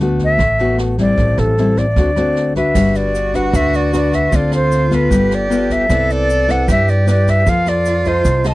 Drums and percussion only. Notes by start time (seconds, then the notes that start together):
0.19 kick, snare
0.39 kick, cross-stick, snare
0.59 snare
0.78 cross-stick, snare
0.98 kick, snare
1.18 kick, snare
1.37 cross-stick, snare
1.57 snare
1.77 kick, snare
1.96 kick, snare
2.16 cross-stick, snare
2.36 snare
2.55 kick, snare
2.75 kick, cross-stick, snare, crash, shaker
2.94 snare, shaker
3.14 snare, shaker
3.34 kick, snare, shaker
3.53 kick, cross-stick, snare, shaker
3.73 snare, shaker
3.93 cross-stick, snare, shaker
4.13 kick, snare, shaker
4.32 kick, snare, shaker
4.51 cross-stick, snare, shaker
4.72 snare, shaker
4.91 kick, snare, shaker
5.11 kick, snare, shaker
5.31 cross-stick, snare, shaker
5.50 snare, shaker
5.70 kick, snare, shaker
5.90 kick, cross-stick, snare, shaker
6.10 snare, shaker
6.29 snare, shaker
6.49 kick, snare, shaker
6.68 kick, cross-stick, snare, shaker
6.88 snare, shaker
7.08 cross-stick, snare, shaker
7.27 kick, snare, shaker
7.47 kick, snare, shaker
7.66 cross-stick, snare, shaker
7.85 snare, shaker
8.05 kick, snare, shaker
8.25 kick, snare, shaker
8.44 cross-stick, snare, shaker